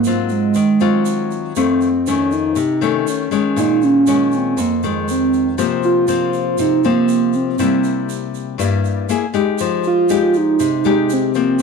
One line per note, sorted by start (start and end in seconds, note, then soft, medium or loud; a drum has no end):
0.00 0.53 G#2 medium
0.00 0.33 A#3 loud
0.04 0.55 F#3 medium
0.04 0.56 C4 medium
0.04 0.56 F4 medium
0.04 shaker medium
0.29 1.31 G#3 medium
0.29 shaker soft
0.54 1.53 D#3 medium
0.54 shaker medium
0.80 1.52 F#3 medium
0.80 1.52 C4 medium
0.80 1.52 F4 medium
0.80 shaker soft
1.05 shaker medium
1.31 shaker soft
1.56 2.54 F2 medium
1.56 1.88 D#3 medium
1.56 1.89 A3 medium
1.56 2.09 C4 loud
1.56 shaker medium
1.81 shaker soft
2.07 2.57 D#3 medium
2.07 2.57 A3 medium
2.07 2.34 C#4 loud
2.07 2.57 C#4 medium
2.07 shaker medium
2.31 3.11 D#4 loud
2.31 shaker soft
2.56 3.04 C3 medium
2.56 shaker medium
2.81 3.28 D#3 medium
2.81 3.28 A3 medium
2.81 3.28 C#4 medium
2.81 shaker soft
3.07 3.58 C#4 loud
3.07 shaker medium
3.31 4.03 D#3 medium
3.31 4.03 G#3 medium
3.31 4.03 C#4 medium
3.31 shaker soft
3.56 4.55 A#2 medium
3.56 3.85 D#4 loud
3.56 shaker medium
3.82 4.37 C#4 loud
3.82 shaker soft
4.07 4.57 D#3 medium
4.07 4.57 G#3 medium
4.07 4.57 C#4 medium
4.07 shaker medium
4.32 4.61 C4 medium
4.32 shaker soft
4.57 5.55 F2 medium
4.57 4.84 A#3 medium
4.57 shaker medium
4.83 5.54 D#3 medium
4.83 5.55 G#3 medium
4.83 5.12 G#3 medium
4.83 shaker soft
5.08 5.47 C4 medium
5.08 shaker medium
5.33 shaker soft
5.58 6.56 C3 medium
5.58 6.04 F3 medium
5.58 6.05 A#3 medium
5.58 6.05 C4 medium
5.58 shaker medium
5.83 6.62 F4 loud
5.83 shaker soft
6.08 6.79 F3 medium
6.08 6.80 A#3 medium
6.08 6.80 C4 medium
6.08 shaker medium
6.33 shaker soft
6.58 7.57 C3 medium
6.58 6.87 D#4 loud
6.58 shaker medium
6.84 7.55 F3 medium
6.84 7.56 A#3 medium
6.84 7.37 A#3 loud
6.84 7.56 C4 medium
6.84 shaker soft
7.08 shaker medium
7.33 8.10 C4 medium
7.33 shaker soft
7.59 8.57 C3 medium
7.59 8.55 G3 medium
7.59 8.56 A#3 soft
7.59 8.56 E4 medium
7.59 shaker medium
7.84 shaker soft
8.09 shaker medium
8.34 shaker soft
8.58 9.06 G2 medium
8.58 9.07 G3 medium
8.58 9.07 A#3 soft
8.58 9.07 E4 medium
8.58 shaker medium
8.85 shaker soft
9.09 9.24 A#3 medium
9.09 9.25 E4 soft
9.09 9.25 G#4 medium
9.09 shaker medium
9.34 10.05 G#3 medium
9.34 10.05 D#4 medium
9.34 10.06 G4 medium
9.34 shaker soft
9.58 10.58 F3 medium
9.58 shaker medium
9.84 10.38 F4 loud
9.84 shaker soft
10.09 10.81 G#3 soft
10.09 10.81 D#4 medium
10.09 10.81 G4 medium
10.09 shaker medium
10.34 11.11 D#4 loud
10.34 shaker soft
10.59 11.58 C3 medium
10.59 shaker medium
10.84 11.31 G#3 medium
10.84 11.32 D#4 medium
10.84 11.32 G4 medium
10.84 shaker soft
11.09 11.62 C4 medium
11.09 shaker medium
11.34 11.62 F3 medium
11.34 11.62 A#3 medium
11.34 11.62 C4 medium
11.34 shaker soft
11.59 shaker medium